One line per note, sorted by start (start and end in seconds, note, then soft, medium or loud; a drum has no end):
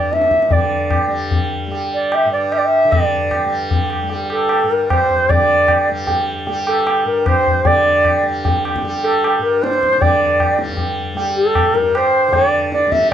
0.00 2.25 G2 medium
0.00 0.48 D3 medium
0.00 1.07 G3 medium
0.00 0.14 D5 medium
0.13 0.54 E5 loud
0.13 tabla te medium
0.21 tabla te medium
0.31 tabla ke medium
0.42 tabla te medium
0.48 2.84 D3 medium
0.48 1.12 D5 medium
0.48 tabla tin medium
0.48 tabla ge medium
0.91 tabla na medium
0.91 tabla ge medium
1.07 1.67 G3 medium
1.31 tabla tin medium
1.31 tabla ge medium
1.67 3.45 G3 medium
1.72 tabla tin medium
1.94 2.16 D5 medium
2.12 2.32 E5 loud
2.12 tabla na medium
2.25 4.63 G2 medium
2.32 2.54 D5 medium
2.52 2.59 E5 loud
2.52 tabla na medium
2.58 2.67 D5 medium
2.65 2.93 E5 loud
2.85 5.30 D3 medium
2.92 3.51 D5 medium
2.92 tabla tin loud
2.92 tabla ge medium
3.31 tabla na medium
3.31 tabla ge medium
3.45 4.03 G3 medium
3.71 tabla tin medium
3.71 tabla ge medium
3.90 tabla na medium
4.03 5.89 G3 medium
4.10 tabla tin medium
4.30 4.73 A4 medium
4.30 tabla na medium
4.49 tabla na medium
4.63 7.05 G2 medium
4.71 4.91 A#4 medium
4.90 5.31 C5 medium
4.90 tabla na medium
4.90 tabla ge medium
5.10 tabla ge soft
5.30 7.64 D3 medium
5.30 5.89 D5 medium
5.30 tabla tin loud
5.30 tabla ge medium
5.68 tabla na medium
5.68 tabla ge medium
5.89 6.47 G3 medium
6.07 tabla tin medium
6.07 tabla ge medium
6.47 8.23 G3 medium
6.47 tabla tin medium
6.67 7.08 A4 medium
6.67 tabla na medium
6.87 tabla na medium
7.05 9.38 G2 medium
7.05 7.29 A#4 medium
7.26 7.68 C5 loud
7.26 tabla na medium
7.26 tabla ge medium
7.47 tabla ge medium
7.65 9.97 D3 medium
7.65 8.25 D5 loud
7.65 tabla tin loud
7.65 tabla ge medium
8.05 tabla na medium
8.05 tabla ge medium
8.23 8.82 G3 medium
8.45 tabla tin medium
8.45 tabla ge medium
8.65 tabla na medium
8.76 tabla ke medium
8.82 10.57 G3 medium
8.82 tabla tin medium
9.03 9.44 A4 medium
9.03 tabla na medium
9.24 tabla na medium
9.39 11.71 G2 medium
9.39 9.64 A#4 medium
9.62 10.03 C5 loud
9.62 tabla te medium
9.73 tabla te medium
9.83 tabla ke medium
9.93 tabla te medium
9.98 12.28 D3 medium
9.98 10.59 D5 medium
9.98 tabla tin loud
9.98 tabla ge medium
10.40 tabla na medium
10.40 tabla ge medium
10.57 11.14 G3 medium
10.57 tabla te medium
10.69 tabla ge medium
10.77 tabla tin medium
10.77 tabla ge medium
11.14 12.87 G3 medium
11.14 tabla tin medium
11.36 11.76 A4 medium
11.55 tabla na medium
11.55 tabla ge medium
11.71 13.13 G2 medium
11.71 11.98 A#4 medium
11.71 tabla te medium
11.95 12.35 C5 loud
11.95 tabla na medium
12.28 13.13 D3 medium
12.33 12.72 D5 loud
12.33 tabla tin loud
12.33 tabla ge medium
12.72 12.93 D5 loud
12.72 tabla te medium
12.87 13.13 G3 medium
12.92 13.10 E5 loud
12.92 tabla ke medium